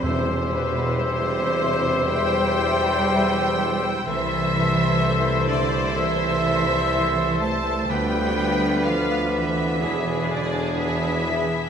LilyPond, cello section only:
\new Staff \with { instrumentName = "Cello section" } { \clef bass \time 4/4 \key c \major \tempo 4 = 62 c8 b,8 c4 g2 | \key a \minor e4. d8 e4. a8 | g4 f8 e4 d8 e4 | }